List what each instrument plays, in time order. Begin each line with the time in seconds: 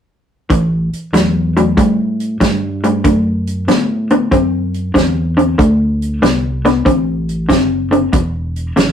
0.50 fingered electric bass A1, clean electric guitar A2 E3, kick, closed hi-hat
0.93 muted fingered electric bass stroke, closed hi-hat
1.13 fingered electric bass E2, clean electric guitar A2 F#3, snare, closed hi-hat
1.57 clean electric guitar A2 F#3, closed hi-hat
1.77 clean electric guitar A2 G3, fingered electric bass A2, kick, closed hi-hat
2.20 closed hi-hat
2.41 fingered electric bass G2, clean electric guitar A2 G3, kick, snare, closed hi-hat
2.84 clean electric guitar A2 G3, closed hi-hat
3.04 fingered electric bass F#2, clean electric guitar D3 A3, kick, closed hi-hat
3.47 closed hi-hat
3.67 fingered electric bass A2, clean electric guitar D3 B3, snare, closed hi-hat
4.10 clean electric guitar D3 B3, closed hi-hat
4.31 fingered electric bass F#2, clean electric guitar D3 C4, kick, closed hi-hat
4.74 closed hi-hat
4.94 fingered electric bass E2, clean electric guitar D3 C4, kick, snare, closed hi-hat
5.37 clean electric guitar D3 C4, closed hi-hat
5.58 fingered electric bass D2, clean electric guitar D3 A3, kick, closed hi-hat
6.02 closed hi-hat
6.21 fingered electric bass C2, clean electric guitar D3 B3, snare, closed hi-hat
6.65 clean electric guitar D3 B3, snare, closed hi-hat
6.85 fingered electric bass A1, clean electric guitar D3 C4, kick, closed hi-hat
7.29 closed hi-hat
7.49 fingered electric bass F#1, clean electric guitar D3 C4, kick, snare, closed hi-hat
7.91 clean electric guitar D3 C4, closed hi-hat
8.13 fingered electric bass E1, clean electric guitar E2 B2, kick, closed hi-hat
8.56 closed hi-hat
8.76 fingered electric bass G#1, clean electric guitar E2 C#3, snare, closed hi-hat